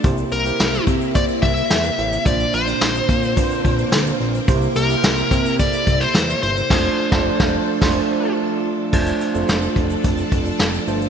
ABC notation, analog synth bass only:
X:1
M:4/4
L:1/16
Q:1/4=108
K:F
V:1 name="Analog synth bass" clef=bass
C,,2 C,,2 C,,2 C,3 z C,,2 E,,2 A,,,2 | B,,,2 B,,,2 B,,,2 B,,3 z B,,,2 D,,2 B,,,2 | C,,2 C,,2 C,,2 C,3 z C,,2 E,,2 G,,,2 | F,,,2 z F,,,2 F,,,2 z F,,,2 z6 |
F,,,2 z F,,, F,,,2 F,,,2 F,,,2 F,,,2 F,,,2 G,,,2 |]